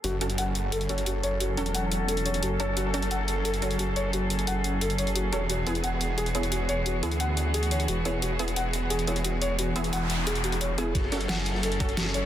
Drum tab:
RD |----------------|----------------|----------------|----------------|
HH |x-xxx-x-xxxxx-x-|x-xxx-x-xxxxx-x-|x-xxx-x-xxxxx-x-|x-xxx-x-xxxxx-x-|
SD |----------------|----------------|----------------|----------------|
BD |----------------|----------------|----------------|----------------|

RD |----------------|----------------|----------------|----------------|
HH |x-xxx-x-xxxxx-x-|x-xxx-x-xxxxx-x-|x-xxx-x-xxxxx-x-|x-xxx-x-xxxxx-x-|
SD |----------------|----------------|----------------|----------------|
BD |----------------|----------------|----------------|----------------|

RD |xxx-x-x-x-xxx-x-|
HH |x-xxx-x-xxxxx-x-|
SD |--o-oooo----o---|
BD |o---------o-----|